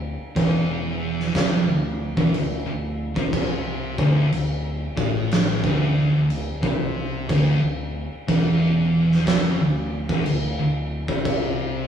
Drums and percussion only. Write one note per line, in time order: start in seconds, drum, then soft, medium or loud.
0.36 kick loud
0.36 crash medium
1.20 snare soft
1.35 kick loud
1.35 snare loud
1.35 crash medium
2.17 kick loud
2.34 crash medium
3.16 kick loud
3.33 kick loud
3.33 crash medium
3.98 kick loud
4.32 crash medium
4.97 kick loud
5.31 snare loud
5.31 crash medium
5.64 kick loud
6.30 crash medium
6.63 kick loud
7.29 kick loud
7.29 crash medium
8.28 kick loud
8.28 crash medium
9.12 snare soft
9.27 kick loud
9.27 snare loud
9.27 crash medium
10.09 kick loud
10.26 crash medium
11.08 kick loud
11.25 kick loud
11.25 crash medium